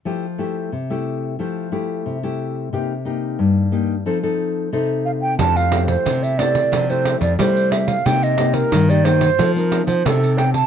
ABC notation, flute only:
X:1
M:4/4
L:1/16
Q:1/4=90
K:F
V:1 name="Flute"
z16 | z12 z2 f g | a f2 c2 e d3 c2 d c2 e f | g _e2 B2 d c3 B2 c A2 g a |]